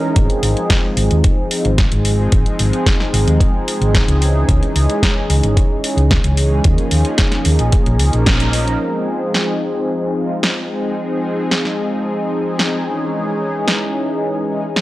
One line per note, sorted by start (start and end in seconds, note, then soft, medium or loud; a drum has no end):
0.00 0.13 E3 medium
0.00 0.13 G#3 medium
0.00 0.13 C#4 medium
0.00 0.13 D#4 medium
0.00 0.14 A#4 loud
0.15 0.26 G#1 loud
0.15 1.47 F3 medium
0.15 1.48 G#3 medium
0.15 1.48 C4 medium
0.15 1.48 D#4 medium
0.15 1.49 G#4 medium
0.15 kick loud
0.15 closed hi-hat medium
0.30 closed hi-hat soft
0.43 0.53 G#1 medium
0.43 open hi-hat loud
0.57 closed hi-hat soft
0.70 kick loud
0.70 snare loud
0.70 closed hi-hat medium
0.97 1.07 G#1 medium
0.97 open hi-hat loud
1.11 1.21 D#2 medium
1.11 closed hi-hat soft
1.24 kick loud
1.24 closed hi-hat medium
1.51 1.66 F3 medium
1.51 1.66 G#3 medium
1.51 1.66 C4 medium
1.51 1.66 D#4 medium
1.51 1.66 F4 medium
1.51 open hi-hat loud
1.65 1.85 G#1 loud
1.65 closed hi-hat soft
1.78 kick loud
1.78 snare loud
1.78 closed hi-hat medium
1.91 2.27 G#1 medium
1.91 2.02 F3 medium
1.91 2.02 G#3 medium
1.91 2.02 C4 medium
1.91 2.02 D#4 medium
1.91 2.02 G#4 loud
1.91 closed hi-hat soft
2.05 2.29 F3 loud
2.05 2.29 G#3 medium
2.05 2.29 C4 medium
2.05 2.29 D#4 medium
2.05 2.29 G#4 loud
2.05 open hi-hat loud
2.31 2.43 G#1 loud
2.31 3.77 F3 medium
2.31 3.78 G#3 medium
2.31 3.78 C4 medium
2.31 3.78 D#4 medium
2.31 3.78 G#4 medium
2.31 kick loud
2.31 closed hi-hat medium
2.46 closed hi-hat soft
2.59 2.70 G#1 medium
2.59 open hi-hat loud
2.73 closed hi-hat soft
2.86 kick loud
2.86 snare loud
2.86 closed hi-hat medium
3.00 snare soft
3.13 3.24 G#1 loud
3.13 open hi-hat loud
3.27 3.37 D#2 medium
3.27 closed hi-hat soft
3.40 kick loud
3.40 closed hi-hat medium
3.68 open hi-hat loud
3.81 4.01 G#1 loud
3.81 4.05 F3 medium
3.81 4.05 G#3 medium
3.81 4.05 C4 medium
3.81 4.05 D#4 medium
3.81 4.05 G#4 medium
3.81 closed hi-hat soft
3.95 kick loud
3.95 snare loud
3.95 closed hi-hat medium
4.08 4.43 C#2 medium
4.08 4.18 F3 loud
4.08 4.18 G#3 medium
4.08 4.18 C4 medium
4.08 4.19 D#4 medium
4.08 4.19 G#4 loud
4.08 closed hi-hat medium
4.20 4.45 E3 medium
4.20 4.45 G#3 medium
4.20 4.45 C#4 medium
4.20 4.45 D#4 medium
4.20 4.45 G#4 medium
4.20 open hi-hat loud
4.48 4.59 C#2 loud
4.48 5.80 E3 medium
4.48 5.80 G#3 medium
4.48 5.81 C#4 medium
4.48 5.81 D#4 medium
4.48 5.81 G#4 medium
4.48 kick loud
4.48 closed hi-hat medium
4.63 closed hi-hat soft
4.76 4.86 C#2 medium
4.76 open hi-hat loud
4.90 closed hi-hat soft
5.03 kick loud
5.03 snare loud
5.03 closed hi-hat medium
5.30 5.40 C#2 loud
5.30 open hi-hat loud
5.43 5.53 G#1 medium
5.43 closed hi-hat medium
5.57 kick loud
5.57 closed hi-hat medium
5.83 5.98 E3 medium
5.83 5.98 G#3 medium
5.83 5.99 C#4 medium
5.83 5.99 D#4 medium
5.83 5.99 G#4 medium
5.83 open hi-hat loud
5.97 6.17 C#2 loud
5.97 closed hi-hat soft
6.11 kick loud
6.11 snare loud
6.11 closed hi-hat medium
6.24 6.59 C#2 medium
6.24 6.34 E3 medium
6.24 6.35 G#3 medium
6.24 6.35 C#4 medium
6.24 6.35 D#4 medium
6.24 6.35 G#4 loud
6.24 closed hi-hat medium
6.37 6.61 E3 medium
6.37 6.61 G#3 medium
6.37 6.62 C#4 medium
6.37 6.62 D#4 medium
6.37 6.62 G#4 loud
6.37 open hi-hat loud
6.63 6.75 D#2 loud
6.63 8.10 F3 medium
6.63 8.10 A#3 medium
6.63 8.10 C#4 medium
6.63 8.11 D#4 medium
6.63 8.11 G#4 loud
6.63 kick loud
6.63 closed hi-hat medium
6.78 closed hi-hat soft
6.91 7.02 D#2 medium
6.91 open hi-hat loud
7.05 closed hi-hat soft
7.18 kick loud
7.18 snare loud
7.18 closed hi-hat medium
7.32 snare soft
7.32 closed hi-hat soft
7.45 7.56 D#2 loud
7.45 open hi-hat loud
7.59 7.70 A#1 medium
7.59 closed hi-hat medium
7.72 kick loud
7.72 closed hi-hat medium
7.86 8.00 A#1 medium
7.86 closed hi-hat soft
7.99 8.10 C#2 medium
7.99 open hi-hat loud
8.12 8.76 A#1 medium
8.12 8.77 F3 medium
8.12 8.77 A#3 medium
8.12 8.77 C#4 medium
8.12 8.78 D#4 medium
8.12 8.78 A#4 loud
8.12 closed hi-hat soft
8.26 kick loud
8.26 snare loud
8.26 closed hi-hat medium
8.40 closed hi-hat medium
8.53 open hi-hat loud
8.68 closed hi-hat soft
8.80 10.12 F3 medium
8.80 10.13 G#3 medium
8.80 10.13 C4 medium
8.80 10.13 D#4 medium
8.80 10.14 G#4 medium
9.34 snare loud
10.16 10.31 F3 medium
10.16 10.31 G#3 medium
10.16 10.31 C4 medium
10.16 10.31 D#4 medium
10.16 10.31 F4 medium
10.43 snare loud
10.57 10.67 F3 medium
10.57 10.67 G#3 medium
10.57 10.67 C4 medium
10.57 10.67 D#4 medium
10.57 10.67 G#4 medium
10.70 10.94 F3 medium
10.70 10.94 G#3 medium
10.70 10.94 C4 medium
10.70 10.94 D#4 medium
10.70 10.95 G#4 loud
10.96 12.42 F3 medium
10.96 12.43 G#3 medium
10.96 12.43 C4 medium
10.96 12.43 D#4 medium
10.96 12.43 G#4 medium
11.51 snare loud
11.65 snare soft
12.45 12.69 F3 medium
12.45 12.70 G#3 medium
12.45 12.70 C4 medium
12.45 12.70 D#4 medium
12.45 12.70 G#4 medium
12.59 snare loud
12.72 12.83 F3 medium
12.72 12.83 G#3 medium
12.72 12.83 C4 medium
12.72 12.83 D#4 medium
12.72 12.83 G#4 loud
12.85 13.10 E3 medium
12.85 13.10 G#3 medium
12.85 13.10 C#4 medium
12.85 13.10 D#4 medium
12.85 13.10 G#4 medium
13.11 14.44 E3 medium
13.11 14.45 G#3 medium
13.11 14.45 C#4 medium
13.11 14.45 D#4 medium
13.11 14.46 G#4 medium
13.68 snare loud
14.48 14.63 E3 medium
14.48 14.63 G#3 medium
14.48 14.63 C#4 medium
14.48 14.63 D#4 medium
14.48 14.63 G#4 medium
14.76 snare loud